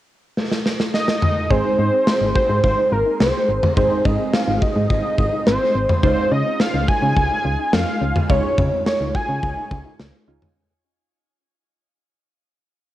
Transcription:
0.37 snare medium
0.52 snare medium
0.66 snare medium
0.80 snare medium
0.94 1.52 D#5 medium
0.94 snare medium
1.08 snare medium
1.22 mid tom medium
1.50 1.62 G#1 loud
1.50 3.73 G#3 medium
1.50 3.73 C4 medium
1.50 1.58 D#4 medium
1.50 3.73 D#4 medium
1.50 3.73 G#4 medium
1.50 2.35 C5 medium
1.50 kick loud
1.65 1.72 D#4 medium
1.79 1.90 G#2 loud
1.79 1.86 C#4 medium
1.93 2.07 C4 medium
2.07 snare loud
2.21 2.33 G#1 medium
2.21 2.28 D#4 medium
2.35 2.50 F#4 medium
2.35 2.62 C5 medium
2.35 kick medium
2.49 2.61 G#2 medium
2.64 2.75 G#1 loud
2.64 2.71 F4 medium
2.64 2.90 C5 medium
2.64 kick medium
2.78 2.85 D#4 medium
2.92 3.03 G#1 loud
2.92 2.99 F4 medium
2.92 3.18 A#4 medium
3.06 3.13 D#4 medium
3.20 3.32 C2 medium
3.20 3.34 C4 medium
3.20 3.73 C5 loud
3.20 snare loud
3.49 3.60 G#1 medium
3.49 3.63 C4 medium
3.63 mid tom medium
3.77 3.88 G#1 loud
3.77 5.99 G#3 medium
3.77 5.99 C4 medium
3.77 3.84 D#4 medium
3.77 5.99 D#4 medium
3.77 5.99 G#4 medium
3.77 4.06 C5 loud
3.77 kick loud
3.91 3.98 D#4 medium
4.05 4.16 G#2 medium
4.05 4.12 C#4 medium
4.05 4.35 D#5 medium
4.05 kick medium
4.19 4.34 C4 medium
4.33 4.63 F5 loud
4.33 snare loud
4.48 4.59 G#1 medium
4.48 4.55 D#4 medium
4.62 4.76 F#4 medium
4.62 5.46 D#5 loud
4.62 kick medium
4.76 4.87 G#2 loud
4.90 5.01 G#1 loud
4.90 4.97 F4 medium
4.90 kick medium
5.04 5.11 D#4 medium
5.18 5.30 G#1 loud
5.18 5.25 F4 medium
5.18 kick medium
5.33 5.40 D#4 medium
5.46 5.58 G#1 loud
5.46 5.61 C4 medium
5.46 5.99 C5 loud
5.46 snare loud
5.75 5.86 G#1 loud
5.75 5.89 C4 medium
5.89 mid tom medium
6.03 6.15 C#2 loud
6.03 8.26 G#3 medium
6.03 8.26 C#4 medium
6.03 6.10 D#4 medium
6.03 8.26 D#4 medium
6.03 8.26 F4 medium
6.03 6.33 C5 loud
6.03 kick loud
6.17 6.25 D#4 medium
6.31 6.43 C#3 loud
6.31 6.39 C#4 medium
6.31 6.61 D#5 loud
6.46 6.60 C4 medium
6.60 6.89 F5 loud
6.60 snare loud
6.74 6.85 C#2 loud
6.74 6.81 D#4 medium
6.88 7.02 F#4 medium
6.88 7.74 G#5 loud
6.88 kick medium
7.02 7.14 C#3 medium
7.17 7.28 C#2 loud
7.17 7.24 F4 medium
7.17 kick medium
7.31 7.38 D#4 medium
7.45 7.56 C#2 loud
7.45 7.52 F4 medium
7.59 7.66 D#4 medium
7.73 7.84 F2 medium
7.73 7.87 C#4 medium
7.73 8.29 F5 loud
7.73 snare loud
8.01 8.13 C#2 loud
8.01 8.16 C#4 medium
8.16 mid tom medium
8.30 8.41 C#2 loud
8.30 10.24 G#3 medium
8.30 10.24 C#4 medium
8.30 10.24 D#4 medium
8.30 8.37 D#4 medium
8.30 10.24 F4 medium
8.30 8.82 C#5 loud
8.30 kick loud
8.44 8.51 D#4 medium
8.58 8.69 C#3 medium
8.58 8.65 C#4 medium
8.58 kick medium
8.58 mid tom medium
8.72 8.86 C4 medium
8.86 9.13 C#5 medium
8.86 snare loud
9.00 9.12 C#2 loud
9.00 9.08 D#4 medium
9.15 9.29 F#4 medium
9.15 9.96 G#5 loud
9.15 kick medium
9.29 9.40 C#3 medium
9.43 9.54 C#2 loud
9.43 9.50 F4 medium
9.43 kick medium
9.57 9.64 D#4 medium
9.71 9.82 C#2 loud
9.71 9.78 F4 medium
9.71 kick medium
9.85 9.92 D#4 medium
9.99 10.11 C#2 loud
9.99 10.14 C#4 medium
9.99 snare loud
10.28 10.39 C#2 medium
10.28 10.56 G#3 medium
10.28 10.56 C#4 medium
10.28 10.42 C#4 medium
10.28 10.56 D#4 medium
10.28 10.56 F4 medium
10.42 mid tom medium

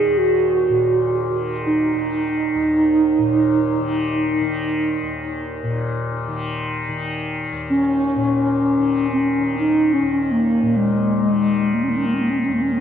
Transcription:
0.00 0.69 A#2 soft
0.00 1.32 D#3 soft
0.00 0.20 G#4 medium
0.07 2.55 D#2 soft
0.18 1.40 F#4 medium
0.69 3.18 A#2 soft
1.32 1.94 D#3 soft
1.66 4.89 D#4 medium
1.94 3.80 D#3 soft
2.55 5.03 D#2 soft
3.18 5.63 A#2 soft
3.80 4.41 D#3 soft
4.41 6.28 D#3 soft
5.03 7.52 D#2 soft
5.63 8.15 A#2 soft
6.28 6.89 D#3 soft
6.89 8.77 D#3 soft
7.53 10.02 D#2 soft
7.70 9.07 C#4 medium
8.16 10.62 A#2 soft
8.77 9.39 D#3 soft
9.12 9.55 C#4 medium
9.39 11.27 D#3 soft
9.59 9.95 D#4 medium
9.93 10.33 C#4 medium
10.02 12.48 D#2 soft
10.31 10.78 A#3 medium
10.62 12.80 A#2 soft
10.77 11.76 G#3 medium
11.27 11.87 D#3 soft
11.74 11.85 A#3 soft
11.83 11.91 C#4 soft
11.87 12.80 D#3 soft
11.87 11.98 A#3 soft
11.97 12.07 C#4 soft
12.06 12.16 A#3 soft
12.14 12.23 C#4 soft
12.21 12.31 A#3 soft
12.30 12.40 C#4 soft
12.39 12.46 A#3 soft
12.45 12.55 C#4 soft
12.49 12.80 D#2 soft
12.53 12.63 A#3 soft
12.62 12.73 C#4 soft
12.72 12.79 A#3 soft

